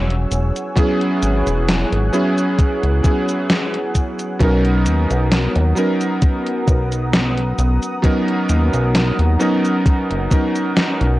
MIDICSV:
0, 0, Header, 1, 5, 480
1, 0, Start_track
1, 0, Tempo, 909091
1, 407, Time_signature, 4, 2, 24, 8
1, 5911, End_track
2, 0, Start_track
2, 0, Title_t, "Analog synth pad"
2, 0, Program_c, 0, 89
2, 0, Note_on_c, 0, 73, 81
2, 0, Note_on_c, 0, 78, 75
2, 0, Note_on_c, 0, 80, 75
2, 0, Note_on_c, 0, 88, 89
2, 388, Note_off_c, 0, 88, 0
2, 408, Note_on_c, 0, 90, 90
2, 2306, Note_off_c, 0, 73, 0
2, 2306, Note_off_c, 0, 80, 0
2, 2308, Note_off_c, 0, 90, 0
2, 2324, Note_on_c, 0, 82, 72
2, 2326, Note_on_c, 0, 59, 82
2, 2326, Note_on_c, 0, 87, 89
2, 5911, Note_off_c, 0, 59, 0
2, 5911, Note_off_c, 0, 78, 0
2, 5911, Note_off_c, 0, 82, 0
2, 5911, Note_off_c, 0, 87, 0
2, 5911, End_track
3, 0, Start_track
3, 0, Title_t, "Electric grand piano"
3, 0, Program_c, 1, 2
3, 0, Control_c, 1, 64, 127
3, 0, Note_on_c, 1, 54, 77
3, 0, Note_on_c, 1, 59, 73
3, 0, Note_on_c, 1, 61, 70
3, 0, Note_on_c, 1, 64, 71
3, 0, Note_on_c, 1, 68, 87
3, 376, Note_off_c, 1, 54, 0
3, 378, Note_off_c, 1, 59, 0
3, 380, Note_off_c, 1, 61, 0
3, 382, Note_off_c, 1, 64, 0
3, 384, Note_off_c, 1, 68, 0
3, 399, Note_on_c, 1, 54, 93
3, 403, Note_on_c, 1, 59, 88
3, 407, Note_on_c, 1, 61, 88
3, 411, Note_on_c, 1, 64, 88
3, 415, Note_on_c, 1, 68, 106
3, 1096, Note_off_c, 1, 54, 0
3, 1098, Note_off_c, 1, 59, 0
3, 1100, Note_off_c, 1, 61, 0
3, 1102, Note_off_c, 1, 64, 0
3, 1104, Note_off_c, 1, 68, 0
3, 1123, Note_on_c, 1, 54, 88
3, 1124, Note_on_c, 1, 59, 82
3, 1125, Note_on_c, 1, 61, 82
3, 1128, Note_on_c, 1, 64, 84
3, 1131, Note_on_c, 1, 68, 97
3, 1578, Note_off_c, 1, 54, 0
3, 1579, Note_off_c, 1, 59, 0
3, 1579, Note_off_c, 1, 61, 0
3, 1581, Note_off_c, 1, 64, 0
3, 1582, Note_off_c, 1, 68, 0
3, 1599, Note_on_c, 1, 54, 75
3, 1604, Note_on_c, 1, 59, 71
3, 1608, Note_on_c, 1, 61, 70
3, 1612, Note_on_c, 1, 64, 71
3, 1616, Note_on_c, 1, 68, 84
3, 2296, Note_off_c, 1, 54, 0
3, 2298, Note_off_c, 1, 59, 0
3, 2301, Note_off_c, 1, 61, 0
3, 2302, Note_off_c, 1, 64, 0
3, 2305, Note_off_c, 1, 68, 0
3, 2319, Note_on_c, 1, 54, 99
3, 2324, Note_on_c, 1, 59, 91
3, 2328, Note_on_c, 1, 61, 88
3, 2331, Note_on_c, 1, 63, 91
3, 2334, Control_c, 1, 64, 0
3, 2335, Note_on_c, 1, 70, 108
3, 2421, Control_c, 1, 64, 127
3, 3016, Note_off_c, 1, 54, 0
3, 3019, Note_off_c, 1, 59, 0
3, 3020, Note_off_c, 1, 61, 0
3, 3022, Note_off_c, 1, 63, 0
3, 3024, Note_off_c, 1, 70, 0
3, 3037, Note_on_c, 1, 54, 78
3, 3042, Note_on_c, 1, 59, 73
3, 3046, Note_on_c, 1, 61, 73
3, 3049, Note_on_c, 1, 63, 72
3, 3055, Note_on_c, 1, 70, 88
3, 4215, Note_off_c, 1, 54, 0
3, 4218, Note_off_c, 1, 59, 0
3, 4220, Note_off_c, 1, 61, 0
3, 4221, Note_off_c, 1, 63, 0
3, 4224, Note_off_c, 1, 70, 0
3, 4237, Note_on_c, 1, 54, 95
3, 4241, Note_on_c, 1, 59, 87
3, 4245, Note_on_c, 1, 61, 86
3, 4250, Note_on_c, 1, 63, 88
3, 4253, Note_on_c, 1, 70, 106
3, 4935, Note_off_c, 1, 54, 0
3, 4937, Note_off_c, 1, 59, 0
3, 4939, Note_off_c, 1, 61, 0
3, 4942, Note_off_c, 1, 63, 0
3, 4943, Note_off_c, 1, 70, 0
3, 4960, Note_on_c, 1, 54, 91
3, 4962, Note_on_c, 1, 59, 83
3, 4965, Note_on_c, 1, 61, 84
3, 4967, Note_on_c, 1, 63, 83
3, 4967, Note_on_c, 1, 70, 97
3, 5417, Note_off_c, 1, 54, 0
3, 5418, Note_off_c, 1, 59, 0
3, 5419, Note_off_c, 1, 61, 0
3, 5420, Note_off_c, 1, 63, 0
3, 5420, Note_off_c, 1, 70, 0
3, 5440, Note_on_c, 1, 54, 77
3, 5444, Note_on_c, 1, 59, 70
3, 5448, Note_on_c, 1, 61, 69
3, 5453, Note_on_c, 1, 63, 71
3, 5455, Note_on_c, 1, 70, 83
3, 5911, Note_off_c, 1, 54, 0
3, 5911, Note_off_c, 1, 59, 0
3, 5911, Note_off_c, 1, 61, 0
3, 5911, Note_off_c, 1, 63, 0
3, 5911, Note_off_c, 1, 70, 0
3, 5911, End_track
4, 0, Start_track
4, 0, Title_t, "Analog synth bass"
4, 0, Program_c, 2, 38
4, 0, Note_on_c, 2, 28, 89
4, 139, Note_off_c, 2, 28, 0
4, 166, Note_on_c, 2, 28, 85
4, 274, Note_off_c, 2, 28, 0
4, 647, Note_on_c, 2, 32, 85
4, 755, Note_off_c, 2, 32, 0
4, 776, Note_on_c, 2, 28, 96
4, 976, Note_off_c, 2, 28, 0
4, 1016, Note_on_c, 2, 32, 95
4, 1110, Note_off_c, 2, 32, 0
4, 1496, Note_on_c, 2, 37, 80
4, 1590, Note_off_c, 2, 37, 0
4, 2326, Note_on_c, 2, 35, 99
4, 2567, Note_on_c, 2, 39, 86
4, 2575, Note_off_c, 2, 35, 0
4, 2675, Note_off_c, 2, 39, 0
4, 2695, Note_on_c, 2, 35, 94
4, 2895, Note_off_c, 2, 35, 0
4, 2935, Note_on_c, 2, 39, 98
4, 3030, Note_off_c, 2, 39, 0
4, 3525, Note_on_c, 2, 35, 90
4, 3978, Note_off_c, 2, 35, 0
4, 4005, Note_on_c, 2, 35, 88
4, 4114, Note_off_c, 2, 35, 0
4, 4487, Note_on_c, 2, 39, 91
4, 4595, Note_off_c, 2, 39, 0
4, 4613, Note_on_c, 2, 35, 96
4, 4814, Note_off_c, 2, 35, 0
4, 4853, Note_on_c, 2, 39, 94
4, 4949, Note_off_c, 2, 39, 0
4, 5335, Note_on_c, 2, 30, 82
4, 5430, Note_off_c, 2, 30, 0
4, 5814, Note_on_c, 2, 35, 92
4, 5909, Note_off_c, 2, 35, 0
4, 5911, End_track
5, 0, Start_track
5, 0, Title_t, "Drums"
5, 55, Note_on_c, 9, 42, 41
5, 108, Note_off_c, 9, 42, 0
5, 167, Note_on_c, 9, 42, 67
5, 167, Note_on_c, 9, 69, 65
5, 219, Note_off_c, 9, 42, 0
5, 219, Note_off_c, 9, 69, 0
5, 296, Note_on_c, 9, 42, 39
5, 296, Note_on_c, 9, 69, 37
5, 349, Note_off_c, 9, 42, 0
5, 349, Note_off_c, 9, 69, 0
5, 406, Note_on_c, 9, 36, 120
5, 408, Note_on_c, 9, 42, 95
5, 408, Note_on_c, 9, 69, 27
5, 458, Note_off_c, 9, 36, 0
5, 461, Note_off_c, 9, 42, 0
5, 461, Note_off_c, 9, 69, 0
5, 536, Note_on_c, 9, 42, 41
5, 588, Note_off_c, 9, 42, 0
5, 648, Note_on_c, 9, 42, 68
5, 648, Note_on_c, 9, 69, 63
5, 701, Note_off_c, 9, 42, 0
5, 701, Note_off_c, 9, 69, 0
5, 776, Note_on_c, 9, 42, 40
5, 776, Note_on_c, 9, 69, 36
5, 829, Note_off_c, 9, 42, 0
5, 829, Note_off_c, 9, 69, 0
5, 890, Note_on_c, 9, 38, 122
5, 890, Note_on_c, 9, 42, 95
5, 890, Note_on_c, 9, 69, 28
5, 943, Note_off_c, 9, 38, 0
5, 943, Note_off_c, 9, 42, 0
5, 943, Note_off_c, 9, 69, 0
5, 1016, Note_on_c, 9, 42, 41
5, 1069, Note_off_c, 9, 42, 0
5, 1127, Note_on_c, 9, 69, 64
5, 1180, Note_off_c, 9, 69, 0
5, 1256, Note_on_c, 9, 42, 43
5, 1256, Note_on_c, 9, 69, 36
5, 1309, Note_off_c, 9, 42, 0
5, 1309, Note_off_c, 9, 69, 0
5, 1366, Note_on_c, 9, 36, 119
5, 1368, Note_on_c, 9, 42, 94
5, 1368, Note_on_c, 9, 69, 27
5, 1419, Note_off_c, 9, 36, 0
5, 1420, Note_off_c, 9, 42, 0
5, 1420, Note_off_c, 9, 69, 0
5, 1496, Note_on_c, 9, 42, 41
5, 1549, Note_off_c, 9, 42, 0
5, 1606, Note_on_c, 9, 36, 105
5, 1607, Note_on_c, 9, 42, 69
5, 1607, Note_on_c, 9, 69, 63
5, 1659, Note_off_c, 9, 36, 0
5, 1660, Note_off_c, 9, 42, 0
5, 1660, Note_off_c, 9, 69, 0
5, 1735, Note_on_c, 9, 42, 41
5, 1735, Note_on_c, 9, 69, 36
5, 1788, Note_off_c, 9, 42, 0
5, 1788, Note_off_c, 9, 69, 0
5, 1846, Note_on_c, 9, 38, 123
5, 1846, Note_on_c, 9, 42, 99
5, 1846, Note_on_c, 9, 69, 28
5, 1899, Note_off_c, 9, 38, 0
5, 1899, Note_off_c, 9, 42, 0
5, 1899, Note_off_c, 9, 69, 0
5, 1974, Note_on_c, 9, 42, 40
5, 2027, Note_off_c, 9, 42, 0
5, 2086, Note_on_c, 9, 36, 61
5, 2086, Note_on_c, 9, 42, 68
5, 2086, Note_on_c, 9, 69, 65
5, 2138, Note_off_c, 9, 36, 0
5, 2139, Note_off_c, 9, 42, 0
5, 2139, Note_off_c, 9, 69, 0
5, 2213, Note_on_c, 9, 42, 41
5, 2213, Note_on_c, 9, 69, 36
5, 2266, Note_off_c, 9, 42, 0
5, 2266, Note_off_c, 9, 69, 0
5, 2325, Note_on_c, 9, 36, 122
5, 2326, Note_on_c, 9, 42, 91
5, 2326, Note_on_c, 9, 69, 26
5, 2378, Note_off_c, 9, 36, 0
5, 2379, Note_off_c, 9, 42, 0
5, 2379, Note_off_c, 9, 69, 0
5, 2453, Note_on_c, 9, 42, 39
5, 2506, Note_off_c, 9, 42, 0
5, 2565, Note_on_c, 9, 42, 65
5, 2565, Note_on_c, 9, 69, 61
5, 2618, Note_off_c, 9, 42, 0
5, 2618, Note_off_c, 9, 69, 0
5, 2695, Note_on_c, 9, 42, 40
5, 2695, Note_on_c, 9, 69, 35
5, 2748, Note_off_c, 9, 42, 0
5, 2748, Note_off_c, 9, 69, 0
5, 2807, Note_on_c, 9, 38, 120
5, 2807, Note_on_c, 9, 42, 93
5, 2807, Note_on_c, 9, 69, 27
5, 2860, Note_off_c, 9, 38, 0
5, 2860, Note_off_c, 9, 42, 0
5, 2860, Note_off_c, 9, 69, 0
5, 2933, Note_on_c, 9, 42, 40
5, 2986, Note_off_c, 9, 42, 0
5, 3045, Note_on_c, 9, 69, 60
5, 3098, Note_off_c, 9, 69, 0
5, 3172, Note_on_c, 9, 42, 41
5, 3172, Note_on_c, 9, 69, 36
5, 3225, Note_off_c, 9, 42, 0
5, 3225, Note_off_c, 9, 69, 0
5, 3284, Note_on_c, 9, 42, 94
5, 3284, Note_on_c, 9, 69, 26
5, 3285, Note_on_c, 9, 36, 125
5, 3337, Note_off_c, 9, 42, 0
5, 3337, Note_off_c, 9, 69, 0
5, 3338, Note_off_c, 9, 36, 0
5, 3413, Note_on_c, 9, 42, 41
5, 3466, Note_off_c, 9, 42, 0
5, 3525, Note_on_c, 9, 36, 111
5, 3526, Note_on_c, 9, 42, 66
5, 3526, Note_on_c, 9, 69, 61
5, 3578, Note_off_c, 9, 36, 0
5, 3578, Note_off_c, 9, 42, 0
5, 3578, Note_off_c, 9, 69, 0
5, 3653, Note_on_c, 9, 42, 41
5, 3653, Note_on_c, 9, 69, 36
5, 3706, Note_off_c, 9, 42, 0
5, 3706, Note_off_c, 9, 69, 0
5, 3766, Note_on_c, 9, 38, 125
5, 3766, Note_on_c, 9, 42, 95
5, 3766, Note_on_c, 9, 69, 27
5, 3818, Note_off_c, 9, 38, 0
5, 3818, Note_off_c, 9, 42, 0
5, 3818, Note_off_c, 9, 69, 0
5, 3893, Note_on_c, 9, 42, 41
5, 3946, Note_off_c, 9, 42, 0
5, 4005, Note_on_c, 9, 42, 65
5, 4005, Note_on_c, 9, 69, 60
5, 4058, Note_off_c, 9, 42, 0
5, 4058, Note_off_c, 9, 69, 0
5, 4133, Note_on_c, 9, 42, 39
5, 4133, Note_on_c, 9, 69, 34
5, 4185, Note_off_c, 9, 42, 0
5, 4185, Note_off_c, 9, 69, 0
5, 4245, Note_on_c, 9, 36, 121
5, 4245, Note_on_c, 9, 42, 88
5, 4245, Note_on_c, 9, 69, 25
5, 4297, Note_off_c, 9, 36, 0
5, 4298, Note_off_c, 9, 42, 0
5, 4298, Note_off_c, 9, 69, 0
5, 4374, Note_on_c, 9, 42, 38
5, 4426, Note_off_c, 9, 42, 0
5, 4485, Note_on_c, 9, 42, 64
5, 4485, Note_on_c, 9, 69, 61
5, 4538, Note_off_c, 9, 42, 0
5, 4538, Note_off_c, 9, 69, 0
5, 4613, Note_on_c, 9, 42, 39
5, 4613, Note_on_c, 9, 69, 34
5, 4665, Note_off_c, 9, 42, 0
5, 4665, Note_off_c, 9, 69, 0
5, 4725, Note_on_c, 9, 38, 119
5, 4725, Note_on_c, 9, 42, 90
5, 4725, Note_on_c, 9, 69, 26
5, 4778, Note_off_c, 9, 38, 0
5, 4778, Note_off_c, 9, 42, 0
5, 4778, Note_off_c, 9, 69, 0
5, 4853, Note_on_c, 9, 42, 39
5, 4906, Note_off_c, 9, 42, 0
5, 4966, Note_on_c, 9, 69, 60
5, 5019, Note_off_c, 9, 69, 0
5, 5094, Note_on_c, 9, 42, 40
5, 5094, Note_on_c, 9, 69, 35
5, 5147, Note_off_c, 9, 42, 0
5, 5147, Note_off_c, 9, 69, 0
5, 5205, Note_on_c, 9, 36, 124
5, 5207, Note_on_c, 9, 42, 86
5, 5207, Note_on_c, 9, 69, 26
5, 5257, Note_off_c, 9, 36, 0
5, 5259, Note_off_c, 9, 42, 0
5, 5259, Note_off_c, 9, 69, 0
5, 5336, Note_on_c, 9, 42, 39
5, 5388, Note_off_c, 9, 42, 0
5, 5445, Note_on_c, 9, 36, 106
5, 5446, Note_on_c, 9, 42, 62
5, 5446, Note_on_c, 9, 69, 61
5, 5498, Note_off_c, 9, 36, 0
5, 5498, Note_off_c, 9, 42, 0
5, 5498, Note_off_c, 9, 69, 0
5, 5573, Note_on_c, 9, 42, 39
5, 5573, Note_on_c, 9, 69, 36
5, 5626, Note_off_c, 9, 42, 0
5, 5626, Note_off_c, 9, 69, 0
5, 5685, Note_on_c, 9, 38, 120
5, 5685, Note_on_c, 9, 42, 91
5, 5685, Note_on_c, 9, 69, 27
5, 5737, Note_off_c, 9, 38, 0
5, 5737, Note_off_c, 9, 42, 0
5, 5737, Note_off_c, 9, 69, 0
5, 5812, Note_on_c, 9, 42, 37
5, 5865, Note_off_c, 9, 42, 0
5, 5911, End_track
0, 0, End_of_file